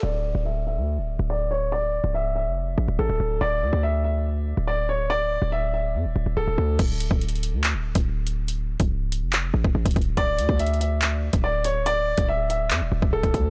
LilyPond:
<<
  \new Staff \with { instrumentName = "Upright piano" } { \time 4/4 \key d \minor \tempo 4 = 142 d''4 e''8 e''4. d''8 cis''8 | d''4 e''8 e''4. a'4 | d''4 e''8 e''4. d''8 cis''8 | d''4 e''8 e''4. a'4 |
r1 | r1 | d''4 e''8 e''4. d''8 cis''8 | d''4 e''8 e''4. a'4 | }
  \new Staff \with { instrumentName = "808-style bass" } { \clef bass \time 4/4 \key d \minor d,,8. d,,4 d,8 d,,8 d,,4~ d,,16~ | d,,8. cis,,4 f,,8. a,,16 d,,16 a,,16 d,,16 d,,8 | d,,8 d,16 d,2 d,,4~ d,,16~ | d,,8. d,,4~ d,,16 f,16 d,,16 d,,16 d,,16 cis,,16 d,,16 d,8 |
d,,8. d,,4 d,8 d,,8 d,,4~ d,,16~ | d,,8. cis,,4 f,,8. a,,16 d,,16 a,,16 d,,16 d,,8 | d,,8 d,16 d,2 d,,4~ d,,16~ | d,,8. d,,4~ d,,16 f,16 d,,16 d,,16 d,,16 cis,,16 d,,16 d,8 | }
  \new DrumStaff \with { instrumentName = "Drums" } \drummode { \time 4/4 r4 r4 r4 r4 | r4 r4 r4 r4 | r4 r4 r4 r4 | r4 r4 r4 r4 |
<cymc hh bd>8 hh16 bd16 \tuplet 3/2 { hh16 hh16 hh16 hh16 r16 r16 } <hc hh>8. <hh bd>16 r8 hh8 | hh8. <hh bd>16 r8 hh8 <hc hh>8. bd16 r16 <hh bd>32 hh32 <hh bd>32 hh16. | <hh bd>8 hh16 bd16 \tuplet 3/2 { hh16 hh16 hh16 hh16 r16 r16 } <hc hh>8. <hh bd>16 r8 hh8 | hh8. <hh bd>16 r8 hh8 <hc hh>8. bd16 r16 <hh bd>16 <hh bd>8 | }
>>